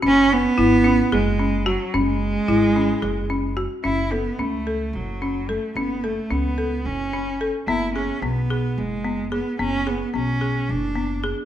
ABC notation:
X:1
M:7/8
L:1/8
Q:1/4=110
K:F#m
V:1 name="Marimba"
C2 E C G C F | C2 E C G C F | C A C A2 C A | C A C A2 C A |
B, G B, G2 B, G | B, G B, G2 B, G |]
V:2 name="Cello"
C B,3 G,2 F, | G,6 z | E B, A,2 F,2 A, | B, A, B,2 C2 z |
E C B,2 G,2 B, | C B, C2 D2 z |]
V:3 name="Upright bass" clef=bass
F,,,2 G,,,2 F,,,3 | F,,,2 G,,,2 F,,,3 | F,,,2 C,,2 F,,,3 | F,,,2 C,,2 F,,,3 |
F,,,2 B,,,2 F,,,3 | F,,,2 B,,,2 F,,,3 |]